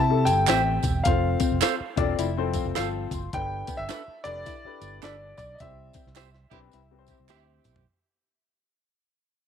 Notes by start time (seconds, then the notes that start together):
Already playing: C3 E4 A5
0.09 C4 E4 G4 A4
0.25 G1 G5, closed hi-hat, tambourine
0.47 A1 C4 G4 C5 E5 G5, snare, clap, closed hi-hat, tambourine
0.83 E1, kick, closed hi-hat, tambourine
1.04 F1 C4 F4 A4 C5 F5, kick, closed hi-hat, tambourine
1.40 C4, kick, closed hi-hat, tambourine
1.52 F1
1.61 A4 C5 F5, snare, clap, closed hi-hat, tambourine
1.80 muted fingered electric bass stroke
1.96 E1 C4 D4 F4 A4 D5, kick, closed hi-hat
2.19 F1 E4, closed hi-hat, tambourine
2.37 F3 C4 A4 C5
2.53 F5, kick, closed hi-hat, tambourine
2.65 F1 G5
2.75 G1 F4 A4 C5 F5 A5, snare, clap, closed hi-hat, tambourine
3.11 F#1 C6, kick, closed hi-hat, tambourine
3.33 G1 D4 G4 A4 B4 G5, kick, closed hi-hat
3.67 B3, kick, closed hi-hat, tambourine
3.77 G1 E5
3.89 D4 A4 B4, snare, clap, closed hi-hat, tambourine
4.08 muted fingered electric bass stroke
4.24 F1 D4 G4 A4 B4 D5, closed hi-hat
4.46 E4, kick, closed hi-hat, tambourine
4.65 D4 G4 A4 B4, muted fingered electric bass stroke
4.81 G1, closed hi-hat, tambourine
5.02 G1 D4 A4 B4 D5, snare, clap, closed hi-hat, tambourine
5.37 B1 D5, kick, closed hi-hat, tambourine
5.55 D#5, tambourine
5.60 C2 C4 E4 G4 C5 E5, kick, closed hi-hat
5.93 C4, kick, closed hi-hat, tambourine
6.07 C2, snare
6.15 G4 C5 E5, snare, clap, closed hi-hat, tambourine
6.35 snare
6.50 B1 C4 D4 E4 G4 B4, kick, closed hi-hat
6.72 C2 E4, closed hi-hat, tambourine
6.91 C4 E4 G4 B4
6.99 C5
7.07 C4 E4 G4, kick, closed hi-hat, tambourine
7.20 C2
7.28 D2 C4 E4 G4 C5 E5, snare, clap, closed hi-hat, tambourine
7.64 B1, closed hi-hat, mid tom, tambourine
7.76 floor tom